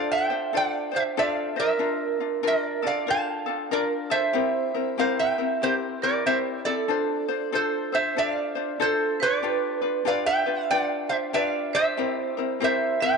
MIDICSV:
0, 0, Header, 1, 4, 480
1, 0, Start_track
1, 0, Key_signature, -1, "major"
1, 0, Tempo, 635593
1, 1367, Time_signature, 4, 2, 24, 8
1, 9951, End_track
2, 0, Start_track
2, 0, Title_t, "Resonator guitar played with a steel bar"
2, 0, Program_c, 0, 25
2, 0, Note_on_c, 0, 77, 83
2, 87, Note_off_c, 0, 77, 0
2, 87, Note_on_c, 0, 79, 83
2, 94, Note_on_c, 0, 76, 59
2, 392, Note_off_c, 0, 76, 0
2, 421, Note_off_c, 0, 79, 0
2, 427, Note_on_c, 0, 74, 67
2, 431, Note_on_c, 0, 77, 89
2, 698, Note_off_c, 0, 74, 0
2, 725, Note_on_c, 0, 72, 58
2, 726, Note_off_c, 0, 77, 0
2, 729, Note_on_c, 0, 76, 80
2, 770, Note_off_c, 0, 72, 0
2, 774, Note_off_c, 0, 76, 0
2, 898, Note_on_c, 0, 76, 76
2, 899, Note_on_c, 0, 74, 64
2, 982, Note_off_c, 0, 76, 0
2, 982, Note_on_c, 0, 77, 76
2, 1174, Note_off_c, 0, 74, 0
2, 1202, Note_off_c, 0, 77, 0
2, 1205, Note_on_c, 0, 70, 66
2, 1206, Note_on_c, 0, 76, 86
2, 1825, Note_off_c, 0, 70, 0
2, 1868, Note_on_c, 0, 70, 58
2, 1870, Note_on_c, 0, 74, 78
2, 1875, Note_off_c, 0, 76, 0
2, 2139, Note_off_c, 0, 70, 0
2, 2156, Note_off_c, 0, 74, 0
2, 2164, Note_on_c, 0, 74, 60
2, 2170, Note_on_c, 0, 77, 80
2, 2323, Note_off_c, 0, 74, 0
2, 2336, Note_off_c, 0, 77, 0
2, 2344, Note_on_c, 0, 81, 88
2, 2345, Note_on_c, 0, 77, 69
2, 2785, Note_off_c, 0, 81, 0
2, 2786, Note_off_c, 0, 77, 0
2, 2816, Note_on_c, 0, 74, 78
2, 2819, Note_on_c, 0, 70, 54
2, 2896, Note_off_c, 0, 74, 0
2, 2898, Note_off_c, 0, 70, 0
2, 3106, Note_on_c, 0, 76, 92
2, 3108, Note_on_c, 0, 72, 73
2, 3737, Note_off_c, 0, 72, 0
2, 3772, Note_on_c, 0, 77, 80
2, 3780, Note_on_c, 0, 72, 56
2, 3786, Note_off_c, 0, 76, 0
2, 3915, Note_off_c, 0, 72, 0
2, 3921, Note_off_c, 0, 77, 0
2, 3924, Note_on_c, 0, 76, 61
2, 3924, Note_on_c, 0, 79, 74
2, 4228, Note_off_c, 0, 76, 0
2, 4251, Note_on_c, 0, 67, 64
2, 4256, Note_on_c, 0, 72, 84
2, 4260, Note_off_c, 0, 79, 0
2, 4333, Note_off_c, 0, 67, 0
2, 4335, Note_off_c, 0, 72, 0
2, 4557, Note_on_c, 0, 74, 76
2, 4561, Note_on_c, 0, 70, 49
2, 4722, Note_off_c, 0, 70, 0
2, 4729, Note_off_c, 0, 74, 0
2, 4731, Note_on_c, 0, 76, 83
2, 4732, Note_on_c, 0, 72, 65
2, 4811, Note_off_c, 0, 76, 0
2, 4813, Note_off_c, 0, 72, 0
2, 5023, Note_on_c, 0, 74, 84
2, 5031, Note_on_c, 0, 69, 64
2, 5654, Note_off_c, 0, 74, 0
2, 5658, Note_off_c, 0, 69, 0
2, 5703, Note_on_c, 0, 72, 69
2, 5710, Note_on_c, 0, 69, 55
2, 5980, Note_off_c, 0, 69, 0
2, 5992, Note_off_c, 0, 72, 0
2, 6000, Note_on_c, 0, 72, 66
2, 6001, Note_on_c, 0, 76, 81
2, 6161, Note_off_c, 0, 72, 0
2, 6161, Note_off_c, 0, 76, 0
2, 6180, Note_on_c, 0, 74, 71
2, 6184, Note_on_c, 0, 76, 89
2, 6267, Note_off_c, 0, 76, 0
2, 6267, Note_on_c, 0, 77, 89
2, 6624, Note_off_c, 0, 74, 0
2, 6661, Note_on_c, 0, 72, 72
2, 6669, Note_off_c, 0, 77, 0
2, 6671, Note_on_c, 0, 69, 58
2, 6940, Note_off_c, 0, 69, 0
2, 6964, Note_off_c, 0, 72, 0
2, 6967, Note_on_c, 0, 74, 92
2, 6972, Note_on_c, 0, 71, 72
2, 7588, Note_off_c, 0, 71, 0
2, 7607, Note_off_c, 0, 74, 0
2, 7608, Note_on_c, 0, 77, 81
2, 7616, Note_on_c, 0, 74, 70
2, 7751, Note_off_c, 0, 74, 0
2, 7751, Note_on_c, 0, 79, 97
2, 7752, Note_off_c, 0, 77, 0
2, 7755, Note_on_c, 0, 76, 61
2, 8061, Note_off_c, 0, 76, 0
2, 8085, Note_on_c, 0, 77, 94
2, 8086, Note_on_c, 0, 74, 75
2, 8092, Note_off_c, 0, 79, 0
2, 8366, Note_off_c, 0, 74, 0
2, 8375, Note_off_c, 0, 77, 0
2, 8378, Note_on_c, 0, 76, 74
2, 8383, Note_on_c, 0, 72, 57
2, 8427, Note_off_c, 0, 76, 0
2, 8432, Note_off_c, 0, 72, 0
2, 8565, Note_on_c, 0, 76, 88
2, 8570, Note_on_c, 0, 74, 64
2, 8648, Note_off_c, 0, 76, 0
2, 8648, Note_on_c, 0, 77, 88
2, 8847, Note_off_c, 0, 74, 0
2, 8871, Note_on_c, 0, 76, 98
2, 8874, Note_off_c, 0, 77, 0
2, 8880, Note_on_c, 0, 72, 79
2, 9499, Note_off_c, 0, 72, 0
2, 9537, Note_off_c, 0, 76, 0
2, 9546, Note_on_c, 0, 76, 79
2, 9550, Note_on_c, 0, 72, 64
2, 9816, Note_off_c, 0, 72, 0
2, 9834, Note_off_c, 0, 76, 0
2, 9834, Note_on_c, 0, 79, 94
2, 9843, Note_on_c, 0, 76, 74
2, 9951, Note_off_c, 0, 76, 0
2, 9951, Note_off_c, 0, 79, 0
2, 9951, End_track
3, 0, Start_track
3, 0, Title_t, "Vibraphone"
3, 0, Program_c, 1, 11
3, 88, Note_on_c, 1, 76, 71
3, 389, Note_off_c, 1, 76, 0
3, 417, Note_on_c, 1, 74, 73
3, 693, Note_off_c, 1, 74, 0
3, 717, Note_on_c, 1, 72, 65
3, 795, Note_off_c, 1, 72, 0
3, 899, Note_on_c, 1, 74, 71
3, 1174, Note_off_c, 1, 74, 0
3, 1206, Note_on_c, 1, 70, 77
3, 1826, Note_off_c, 1, 70, 0
3, 1850, Note_on_c, 1, 70, 65
3, 2129, Note_off_c, 1, 70, 0
3, 2140, Note_on_c, 1, 74, 69
3, 2310, Note_off_c, 1, 74, 0
3, 2329, Note_on_c, 1, 77, 74
3, 2778, Note_off_c, 1, 77, 0
3, 2810, Note_on_c, 1, 70, 63
3, 2945, Note_off_c, 1, 70, 0
3, 3111, Note_on_c, 1, 72, 84
3, 3739, Note_off_c, 1, 72, 0
3, 3780, Note_on_c, 1, 72, 65
3, 3914, Note_off_c, 1, 72, 0
3, 3923, Note_on_c, 1, 76, 80
3, 4227, Note_off_c, 1, 76, 0
3, 4255, Note_on_c, 1, 67, 68
3, 4389, Note_off_c, 1, 67, 0
3, 4548, Note_on_c, 1, 70, 68
3, 4714, Note_off_c, 1, 70, 0
3, 4742, Note_on_c, 1, 72, 74
3, 4875, Note_off_c, 1, 72, 0
3, 5028, Note_on_c, 1, 69, 69
3, 5657, Note_off_c, 1, 69, 0
3, 5700, Note_on_c, 1, 69, 67
3, 5974, Note_off_c, 1, 69, 0
3, 5995, Note_on_c, 1, 72, 70
3, 6158, Note_off_c, 1, 72, 0
3, 6179, Note_on_c, 1, 74, 77
3, 6623, Note_off_c, 1, 74, 0
3, 6656, Note_on_c, 1, 69, 73
3, 6932, Note_off_c, 1, 69, 0
3, 6948, Note_on_c, 1, 71, 82
3, 7576, Note_off_c, 1, 71, 0
3, 7614, Note_on_c, 1, 74, 71
3, 7750, Note_off_c, 1, 74, 0
3, 7760, Note_on_c, 1, 76, 83
3, 8064, Note_off_c, 1, 76, 0
3, 8087, Note_on_c, 1, 74, 81
3, 8366, Note_off_c, 1, 74, 0
3, 8378, Note_on_c, 1, 72, 67
3, 8460, Note_off_c, 1, 72, 0
3, 8569, Note_on_c, 1, 74, 81
3, 8846, Note_off_c, 1, 74, 0
3, 8860, Note_on_c, 1, 72, 77
3, 9489, Note_off_c, 1, 72, 0
3, 9521, Note_on_c, 1, 72, 69
3, 9801, Note_off_c, 1, 72, 0
3, 9822, Note_on_c, 1, 76, 82
3, 9951, Note_off_c, 1, 76, 0
3, 9951, End_track
4, 0, Start_track
4, 0, Title_t, "Ukulele"
4, 0, Program_c, 2, 24
4, 0, Note_on_c, 2, 62, 81
4, 0, Note_on_c, 2, 65, 85
4, 0, Note_on_c, 2, 69, 86
4, 0, Note_on_c, 2, 72, 94
4, 217, Note_off_c, 2, 72, 0
4, 225, Note_off_c, 2, 65, 0
4, 226, Note_on_c, 2, 72, 56
4, 228, Note_off_c, 2, 69, 0
4, 229, Note_off_c, 2, 62, 0
4, 234, Note_on_c, 2, 65, 55
4, 244, Note_on_c, 2, 62, 42
4, 399, Note_off_c, 2, 62, 0
4, 401, Note_off_c, 2, 65, 0
4, 401, Note_on_c, 2, 69, 60
4, 405, Note_off_c, 2, 72, 0
4, 408, Note_on_c, 2, 62, 52
4, 410, Note_on_c, 2, 65, 58
4, 414, Note_on_c, 2, 72, 63
4, 683, Note_off_c, 2, 72, 0
4, 692, Note_on_c, 2, 72, 58
4, 696, Note_off_c, 2, 65, 0
4, 703, Note_off_c, 2, 62, 0
4, 705, Note_off_c, 2, 69, 0
4, 705, Note_on_c, 2, 65, 51
4, 712, Note_on_c, 2, 62, 46
4, 877, Note_off_c, 2, 62, 0
4, 878, Note_off_c, 2, 72, 0
4, 880, Note_off_c, 2, 65, 0
4, 886, Note_on_c, 2, 62, 84
4, 886, Note_on_c, 2, 69, 75
4, 889, Note_on_c, 2, 65, 74
4, 894, Note_on_c, 2, 72, 82
4, 1169, Note_off_c, 2, 72, 0
4, 1176, Note_off_c, 2, 65, 0
4, 1178, Note_on_c, 2, 72, 53
4, 1185, Note_on_c, 2, 65, 47
4, 1186, Note_off_c, 2, 62, 0
4, 1188, Note_off_c, 2, 69, 0
4, 1195, Note_on_c, 2, 62, 44
4, 1345, Note_off_c, 2, 62, 0
4, 1348, Note_off_c, 2, 72, 0
4, 1349, Note_off_c, 2, 65, 0
4, 1351, Note_on_c, 2, 70, 66
4, 1354, Note_on_c, 2, 62, 77
4, 1358, Note_on_c, 2, 65, 78
4, 1655, Note_off_c, 2, 65, 0
4, 1660, Note_off_c, 2, 70, 0
4, 1662, Note_off_c, 2, 62, 0
4, 1664, Note_on_c, 2, 65, 48
4, 1670, Note_on_c, 2, 62, 47
4, 1826, Note_off_c, 2, 62, 0
4, 1832, Note_off_c, 2, 65, 0
4, 1835, Note_on_c, 2, 62, 77
4, 1836, Note_on_c, 2, 70, 78
4, 1841, Note_on_c, 2, 65, 76
4, 2129, Note_off_c, 2, 65, 0
4, 2129, Note_off_c, 2, 70, 0
4, 2132, Note_on_c, 2, 69, 52
4, 2138, Note_on_c, 2, 65, 53
4, 2139, Note_off_c, 2, 62, 0
4, 2148, Note_on_c, 2, 62, 43
4, 2317, Note_off_c, 2, 62, 0
4, 2317, Note_on_c, 2, 70, 58
4, 2318, Note_off_c, 2, 65, 0
4, 2319, Note_off_c, 2, 69, 0
4, 2326, Note_on_c, 2, 62, 59
4, 2327, Note_on_c, 2, 65, 62
4, 2329, Note_on_c, 2, 69, 57
4, 2604, Note_off_c, 2, 69, 0
4, 2613, Note_on_c, 2, 69, 56
4, 2616, Note_off_c, 2, 65, 0
4, 2623, Note_off_c, 2, 70, 0
4, 2625, Note_off_c, 2, 62, 0
4, 2625, Note_on_c, 2, 65, 50
4, 2634, Note_on_c, 2, 62, 47
4, 2799, Note_off_c, 2, 62, 0
4, 2799, Note_off_c, 2, 65, 0
4, 2799, Note_off_c, 2, 69, 0
4, 2803, Note_on_c, 2, 70, 70
4, 2808, Note_on_c, 2, 62, 74
4, 2808, Note_on_c, 2, 65, 71
4, 3093, Note_off_c, 2, 70, 0
4, 3096, Note_on_c, 2, 69, 53
4, 3099, Note_off_c, 2, 65, 0
4, 3108, Note_on_c, 2, 65, 53
4, 3109, Note_off_c, 2, 62, 0
4, 3117, Note_on_c, 2, 62, 44
4, 3272, Note_on_c, 2, 67, 84
4, 3277, Note_off_c, 2, 62, 0
4, 3277, Note_off_c, 2, 65, 0
4, 3280, Note_on_c, 2, 60, 79
4, 3280, Note_on_c, 2, 64, 85
4, 3281, Note_off_c, 2, 69, 0
4, 3285, Note_on_c, 2, 70, 74
4, 3574, Note_off_c, 2, 70, 0
4, 3577, Note_off_c, 2, 64, 0
4, 3581, Note_off_c, 2, 67, 0
4, 3583, Note_on_c, 2, 70, 47
4, 3585, Note_off_c, 2, 60, 0
4, 3586, Note_on_c, 2, 64, 45
4, 3599, Note_on_c, 2, 60, 45
4, 3755, Note_off_c, 2, 60, 0
4, 3758, Note_off_c, 2, 64, 0
4, 3758, Note_on_c, 2, 67, 73
4, 3762, Note_off_c, 2, 70, 0
4, 3764, Note_on_c, 2, 60, 78
4, 3767, Note_on_c, 2, 64, 90
4, 3771, Note_on_c, 2, 70, 84
4, 4055, Note_off_c, 2, 70, 0
4, 4061, Note_off_c, 2, 64, 0
4, 4064, Note_off_c, 2, 67, 0
4, 4064, Note_on_c, 2, 70, 48
4, 4067, Note_off_c, 2, 60, 0
4, 4071, Note_on_c, 2, 64, 48
4, 4084, Note_on_c, 2, 60, 49
4, 4242, Note_off_c, 2, 60, 0
4, 4242, Note_on_c, 2, 67, 55
4, 4244, Note_off_c, 2, 64, 0
4, 4245, Note_off_c, 2, 70, 0
4, 4251, Note_on_c, 2, 60, 62
4, 4253, Note_on_c, 2, 64, 56
4, 4258, Note_on_c, 2, 70, 61
4, 4537, Note_off_c, 2, 70, 0
4, 4544, Note_off_c, 2, 64, 0
4, 4546, Note_on_c, 2, 70, 50
4, 4547, Note_off_c, 2, 67, 0
4, 4551, Note_off_c, 2, 60, 0
4, 4553, Note_on_c, 2, 64, 55
4, 4560, Note_on_c, 2, 60, 46
4, 4722, Note_off_c, 2, 60, 0
4, 4726, Note_off_c, 2, 64, 0
4, 4726, Note_off_c, 2, 70, 0
4, 4727, Note_on_c, 2, 67, 68
4, 4731, Note_on_c, 2, 60, 69
4, 4735, Note_on_c, 2, 64, 76
4, 4743, Note_on_c, 2, 70, 80
4, 5023, Note_off_c, 2, 64, 0
4, 5029, Note_off_c, 2, 67, 0
4, 5031, Note_off_c, 2, 60, 0
4, 5032, Note_on_c, 2, 64, 50
4, 5037, Note_off_c, 2, 70, 0
4, 5041, Note_on_c, 2, 60, 39
4, 5198, Note_off_c, 2, 60, 0
4, 5198, Note_on_c, 2, 69, 68
4, 5202, Note_on_c, 2, 62, 74
4, 5207, Note_off_c, 2, 64, 0
4, 5210, Note_on_c, 2, 65, 81
4, 5212, Note_on_c, 2, 72, 81
4, 5492, Note_off_c, 2, 72, 0
4, 5501, Note_off_c, 2, 65, 0
4, 5501, Note_on_c, 2, 72, 59
4, 5504, Note_off_c, 2, 69, 0
4, 5506, Note_off_c, 2, 62, 0
4, 5510, Note_on_c, 2, 65, 46
4, 5517, Note_on_c, 2, 62, 44
4, 5676, Note_off_c, 2, 62, 0
4, 5678, Note_off_c, 2, 65, 0
4, 5682, Note_on_c, 2, 69, 81
4, 5683, Note_off_c, 2, 72, 0
4, 5685, Note_on_c, 2, 62, 72
4, 5687, Note_on_c, 2, 65, 77
4, 5692, Note_on_c, 2, 72, 75
4, 5974, Note_off_c, 2, 72, 0
4, 5981, Note_off_c, 2, 65, 0
4, 5983, Note_on_c, 2, 72, 53
4, 5986, Note_off_c, 2, 69, 0
4, 5988, Note_off_c, 2, 62, 0
4, 5990, Note_on_c, 2, 65, 41
4, 5998, Note_on_c, 2, 62, 45
4, 6159, Note_off_c, 2, 62, 0
4, 6161, Note_off_c, 2, 65, 0
4, 6165, Note_off_c, 2, 72, 0
4, 6165, Note_on_c, 2, 69, 62
4, 6168, Note_on_c, 2, 62, 63
4, 6171, Note_on_c, 2, 65, 51
4, 6175, Note_on_c, 2, 72, 54
4, 6449, Note_off_c, 2, 72, 0
4, 6458, Note_on_c, 2, 72, 52
4, 6460, Note_off_c, 2, 65, 0
4, 6463, Note_off_c, 2, 62, 0
4, 6467, Note_off_c, 2, 69, 0
4, 6469, Note_on_c, 2, 65, 50
4, 6472, Note_on_c, 2, 62, 45
4, 6633, Note_off_c, 2, 62, 0
4, 6639, Note_off_c, 2, 65, 0
4, 6642, Note_off_c, 2, 72, 0
4, 6642, Note_on_c, 2, 62, 69
4, 6644, Note_on_c, 2, 69, 81
4, 6648, Note_on_c, 2, 65, 77
4, 6652, Note_on_c, 2, 72, 83
4, 6946, Note_off_c, 2, 62, 0
4, 6946, Note_off_c, 2, 69, 0
4, 6947, Note_off_c, 2, 65, 0
4, 6950, Note_off_c, 2, 72, 0
4, 6956, Note_on_c, 2, 65, 46
4, 6961, Note_on_c, 2, 62, 44
4, 7113, Note_off_c, 2, 62, 0
4, 7119, Note_on_c, 2, 67, 61
4, 7120, Note_off_c, 2, 65, 0
4, 7122, Note_on_c, 2, 62, 73
4, 7128, Note_on_c, 2, 71, 82
4, 7129, Note_on_c, 2, 65, 86
4, 7404, Note_off_c, 2, 71, 0
4, 7413, Note_off_c, 2, 65, 0
4, 7413, Note_on_c, 2, 71, 49
4, 7420, Note_off_c, 2, 62, 0
4, 7422, Note_on_c, 2, 65, 44
4, 7424, Note_off_c, 2, 67, 0
4, 7429, Note_on_c, 2, 62, 38
4, 7580, Note_off_c, 2, 62, 0
4, 7586, Note_off_c, 2, 65, 0
4, 7589, Note_on_c, 2, 62, 71
4, 7590, Note_on_c, 2, 67, 72
4, 7593, Note_off_c, 2, 71, 0
4, 7595, Note_on_c, 2, 65, 81
4, 7602, Note_on_c, 2, 71, 94
4, 7890, Note_off_c, 2, 71, 0
4, 7898, Note_off_c, 2, 65, 0
4, 7899, Note_off_c, 2, 62, 0
4, 7899, Note_off_c, 2, 67, 0
4, 7899, Note_on_c, 2, 71, 49
4, 7907, Note_on_c, 2, 65, 50
4, 7912, Note_on_c, 2, 62, 47
4, 8081, Note_off_c, 2, 71, 0
4, 8083, Note_off_c, 2, 62, 0
4, 8083, Note_on_c, 2, 67, 58
4, 8085, Note_off_c, 2, 65, 0
4, 8092, Note_on_c, 2, 62, 56
4, 8094, Note_on_c, 2, 65, 60
4, 8097, Note_on_c, 2, 71, 61
4, 8379, Note_off_c, 2, 65, 0
4, 8385, Note_off_c, 2, 67, 0
4, 8387, Note_off_c, 2, 62, 0
4, 8388, Note_on_c, 2, 65, 48
4, 8392, Note_off_c, 2, 71, 0
4, 8396, Note_on_c, 2, 62, 45
4, 8555, Note_off_c, 2, 62, 0
4, 8556, Note_off_c, 2, 65, 0
4, 8559, Note_on_c, 2, 67, 74
4, 8564, Note_on_c, 2, 62, 79
4, 8565, Note_on_c, 2, 65, 74
4, 8569, Note_on_c, 2, 71, 84
4, 8862, Note_off_c, 2, 65, 0
4, 8862, Note_off_c, 2, 67, 0
4, 8865, Note_off_c, 2, 62, 0
4, 8867, Note_off_c, 2, 71, 0
4, 8871, Note_on_c, 2, 65, 47
4, 8881, Note_on_c, 2, 62, 47
4, 9042, Note_on_c, 2, 67, 72
4, 9046, Note_off_c, 2, 62, 0
4, 9046, Note_off_c, 2, 65, 0
4, 9049, Note_on_c, 2, 60, 83
4, 9053, Note_on_c, 2, 64, 73
4, 9053, Note_on_c, 2, 70, 79
4, 9333, Note_off_c, 2, 70, 0
4, 9342, Note_on_c, 2, 70, 50
4, 9343, Note_off_c, 2, 64, 0
4, 9343, Note_off_c, 2, 67, 0
4, 9347, Note_off_c, 2, 60, 0
4, 9352, Note_on_c, 2, 64, 54
4, 9356, Note_on_c, 2, 60, 45
4, 9517, Note_off_c, 2, 60, 0
4, 9517, Note_off_c, 2, 64, 0
4, 9518, Note_on_c, 2, 67, 67
4, 9521, Note_off_c, 2, 70, 0
4, 9526, Note_on_c, 2, 60, 70
4, 9526, Note_on_c, 2, 64, 92
4, 9534, Note_on_c, 2, 70, 81
4, 9820, Note_off_c, 2, 67, 0
4, 9821, Note_off_c, 2, 70, 0
4, 9825, Note_off_c, 2, 60, 0
4, 9825, Note_off_c, 2, 64, 0
4, 9830, Note_on_c, 2, 70, 46
4, 9834, Note_on_c, 2, 64, 49
4, 9846, Note_on_c, 2, 60, 45
4, 9951, Note_off_c, 2, 60, 0
4, 9951, Note_off_c, 2, 64, 0
4, 9951, Note_off_c, 2, 70, 0
4, 9951, End_track
0, 0, End_of_file